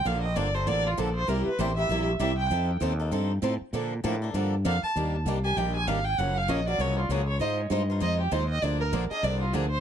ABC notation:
X:1
M:4/4
L:1/8
Q:"Swing" 1/4=196
K:Bb
V:1 name="Violin"
f e d c d F A c | B _c =c =e2 z e g | z8 | z6 f a |
[K:Eb] z3 a g a f g | _g f e d _d F A d | e z3 e G c e | d B z e d F A c |]
V:2 name="Steel-string acoustic guitar"
[D,F,B,DA] z [D,F,B,DA] [B,DA] [D,F,B,DA] z [D,F,B,DA] z | [C,G,B,=EG] z [C,G,B,EG] [B,EG] [C,G,B,EG] z [C,G,B,EG] z | [F,CEA] z [F,CEA] [CEA] [F,CEA] z [F,CEA] z | [D,F,B,DA] z [D,F,B,DA] [B,DA] [D,F,B,DA] z [D,F,B,DA] z |
[K:Eb] [E,G,B,DG] z [E,G,B,DG] [B,DG] [E,G,B,DG] z [E,G,B,DG] z | [_D,F,B,_D_G] z [D,F,B,DG] [B,DG] [D,F,B,DG] z [D,F,B,DG] z | [A,EFc] z [A,EFc] [EFc] [A,EFc] z [A,EFc] z | [D,F,B,DA] z [D,F,B,DA] [B,DA] [D,F,B,DA] z [D,F,B,DA] z |]
V:3 name="Steel-string acoustic guitar"
[D,F,B,DA] z [D,F,B,DA] z [D,F,B,DA] z [D,F,B,DA] z | [C,G,B,=EG] z [C,G,B,EG] z [C,G,B,EG] z [C,G,B,EG] z | [F,CEA] z [F,CEA] z [F,CEA] z [F,CEA] z | [D,F,B,DA] z [D,F,B,DA] z [D,F,B,DA] z [D,F,B,DA] z |
[K:Eb] [E,G,B,DG] z [E,G,B,DG] z [E,G,B,DG] z [E,G,B,DG] z | [_G,_DFB] z [G,DFB] z [G,DFB] z [G,DFB] z | [A,EFc] z [A,EFc] z [A,EFc] z [A,EFc] z | [D,F,B,DA] z [D,F,B,DA] z [D,F,B,DA] z [D,F,B,DA] z |]
V:4 name="Fretless electric bass" clef=bass
B,,,2 G,,,2 A,,,2 B,,,2 | C,, z A,,,2 B,,,2 C,,2 | F,,2 E,,2 G,,2 A,, z | B,,2 A,,2 G,,2 F,, z |
[K:Eb] E,,2 C,,2 B,,,2 A,,,2 | _G,,,2 B,,,2 C,,2 _D,,2 | A,,2 G,,2 F,,2 E,,2 | D,,2 B,,, z C,,2 D,,2 |]